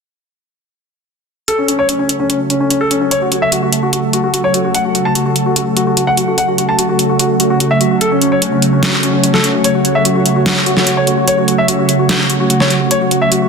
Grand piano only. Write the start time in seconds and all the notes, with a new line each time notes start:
1.48 A4
1.58 C#4
1.68 C#4
1.79 C#5
1.89 C#4
1.99 C#4
2.20 C#4
2.30 C#4
2.50 C#4
2.60 C#4
2.70 C#4
2.81 A4
2.91 C#4
3.01 C#4
3.11 C#5
3.22 F#4
3.32 F#4
3.42 E5
3.52 F#4
3.62 F#4
3.83 F#4
3.93 F#4
4.13 F#4
4.24 F#4
4.34 F#4
4.44 C#5
4.54 F#4
4.64 F#4
4.75 F#5
4.85 F#4
4.95 F#4
5.05 A5
5.15 F#4
5.26 F#4
5.46 F#4
5.56 F#4
5.77 F#4
5.87 F#4
5.97 F#4
6.07 F#5
6.17 F#4
6.28 F#4
6.38 F#5
6.48 F#4
6.58 F#4
6.69 A5
6.79 F#4
6.89 F#4
7.09 F#4
7.20 F#4
7.40 F#4
7.50 F#4
7.60 F#4
7.71 E5
7.81 F#4
7.91 F#4
8.01 A4
8.12 C#4
8.22 C#4
8.32 C#5
8.42 C#4
8.52 C#4
8.73 C#4
9.03 C#4
9.14 C#4
9.24 C#4
9.34 A4
9.44 C#4
9.54 C#4
9.64 C#5
9.75 F#4
9.85 F#4
9.95 E5
10.05 F#4
10.16 F#4
10.36 F#4
10.46 F#4
10.66 F#4
10.77 F#4
10.87 F#4
10.97 C#5
11.07 F#4
11.18 F#4
11.28 C#5
11.38 F#4
11.48 F#4
11.58 E5
11.68 F#4
11.79 F#4
11.99 F#4
12.09 F#4
12.30 F#4
12.40 F#4
12.50 F#4
12.60 C#5
12.70 F#4
12.81 F#4
12.91 C#5
13.01 F#4
13.11 F#4
13.22 E5
13.32 F#4
13.42 F#4